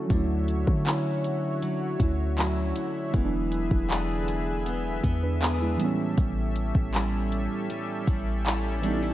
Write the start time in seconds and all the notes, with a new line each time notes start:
Already playing: F#3 A3 C#4 E4
0.07 D2 D3 F#3 A3 F#4 C#5 E5, kick, closed hi-hat
0.12 C#4 E4
0.48 closed hi-hat
0.67 D3, kick
0.86 F#3 C#4 E4, clap, closed hi-hat
1.24 closed hi-hat
1.62 F#3, closed hi-hat
1.99 D2 F#3 A3 C#4 E4, kick, closed hi-hat
2.38 F#3 C#4 E4, clap, closed hi-hat
2.76 E4, closed hi-hat
3.11 E1 E3 F#3 G#3 G#4 B4, kick, closed hi-hat
3.15 B3 C#4
3.24 D4
3.52 closed hi-hat
3.71 E1, kick
3.90 B3 D4 G#4, clap, closed hi-hat
4.28 closed hi-hat
4.66 B3, closed hi-hat
5.04 E2 B3, kick, closed hi-hat
5.23 D4 B4
5.42 B3 D4 G#4, clap, closed hi-hat
5.61 G#3 E4
5.77 A2 E3 G3 C#4 G4 A4, closed hi-hat
5.82 B3 C#4
6.18 A1 A2, kick, closed hi-hat
6.56 closed hi-hat
6.75 A1, kick
6.94 G3 C#4 E4, clap, closed hi-hat
7.32 closed hi-hat
7.70 G3, closed hi-hat
8.07 A1 G3, kick, closed hi-hat
8.46 G3 C#4 E4, clap, closed hi-hat
8.81 E3 G3 D4, closed hi-hat
8.85 B3 D#4
8.94 E4
9.03 E4